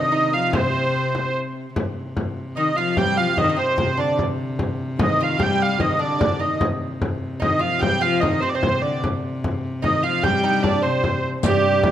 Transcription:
Already playing: C3 D#3 D#4 D#5
0.12 D#4
0.33 F3 F5
0.53 C3 C4 C5, frame drum
0.95 frame drum
1.15 frame drum
1.76 C3, frame drum
2.17 frame drum
2.56 D#3 D#4 D#5
2.76 F3 F4 F5
2.97 G3 G4 G5, frame drum
3.17 F3 F5
3.37 D#3 D#4 D#5, frame drum
3.44 D#4
3.49 D#4
3.56 C3 C4 C5
3.78 C3, frame drum
3.97 D3 D4 D5
4.19 frame drum
4.59 frame drum
4.98 D#3 D#4, frame drum
5.02 D#5
5.20 F4 F5
5.39 G3 G4 G5, frame drum
5.62 F5
5.80 D#3 D#4 D#5, frame drum
5.99 D3 D4 D5
6.19 D4, frame drum
6.39 D#3 D#4 D#5
6.61 C3, frame drum
7.02 frame drum
7.40 D#3 D#4 D#5, frame drum
7.59 F3 F4 F5
7.79 G3 G4 G5, frame drum
8.01 F3 F4 F5
8.20 D#3 D#4 D#5, frame drum
8.40 C3 C4 C5
8.49 D5
8.55 C3 C4 C5
8.63 frame drum
8.82 D3 D5
9.04 frame drum
9.44 frame drum
9.82 D#3 D#4 D#5, frame drum
10.03 F3 F4 F5
10.23 G3 G4 G5, frame drum
10.44 D#4, frame drum
10.63 D4 D5, frame drum
10.82 C3 C4 C5
11.04 frame drum
11.24 frame drum
11.43 G2 C3 G3 G4, riq, frame drum
11.83 F2, frame drum

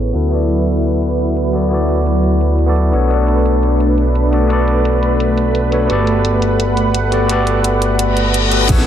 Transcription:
Already playing: A1 B3 C#4 E4 G#4 A4 B4 C#5
0.13 D2 F#3 B3 E4 F#4 A4 B4, closed hi-hat
0.29 B3 E4 F#4, closed hi-hat
0.33 A4 D5
0.49 closed hi-hat
0.67 closed hi-hat
0.84 closed hi-hat
1.02 closed hi-hat
1.19 closed hi-hat
1.36 closed hi-hat
1.53 B3 E4 F#4 A4 D5, closed hi-hat
1.69 B3 E4 F#4, closed hi-hat
1.73 A4 D5
1.89 closed hi-hat
2.06 closed hi-hat
2.24 closed hi-hat
2.41 closed hi-hat
2.59 closed hi-hat
2.66 B3 E4 F#4 A4 D5
2.76 closed hi-hat
2.92 B1 A3 B3 D4 F#4 A4 B4 C#5, closed hi-hat
3.08 B3 D4 F#4, closed hi-hat
3.12 A4 D5
3.28 closed hi-hat
3.46 closed hi-hat
3.63 closed hi-hat
3.80 closed hi-hat
3.98 closed hi-hat
4.15 closed hi-hat
4.31 B3 D4 F#4 A4 D5, closed hi-hat
4.47 B3 D4 F#4, closed hi-hat
4.52 A4 D5
4.68 closed hi-hat
4.85 closed hi-hat
5.03 closed hi-hat
5.20 closed hi-hat
5.38 closed hi-hat
5.55 closed hi-hat
5.71 B3 D4 F#4 A4 C#5, closed hi-hat
5.87 G1 B3 F#4 G4 F#5, closed hi-hat
5.91 A4 D5
6.07 closed hi-hat
6.25 closed hi-hat
6.42 closed hi-hat
6.60 closed hi-hat
6.77 closed hi-hat
6.94 closed hi-hat
7.11 B3 F#4 G4 A4 D5, closed hi-hat
7.26 B3 F#4 G4, closed hi-hat
7.31 A4 D5
7.47 closed hi-hat
7.64 closed hi-hat
7.82 closed hi-hat
7.99 closed hi-hat, reverse cymbal
8.17 closed hi-hat
8.34 closed hi-hat
8.50 B3 F#4 G4 A4 B4, closed hi-hat
8.66 A1 B3 C#4 E4 G#4 B4, kick, closed hi-hat, crash, impact
8.71 A4 C#5
8.79 snare

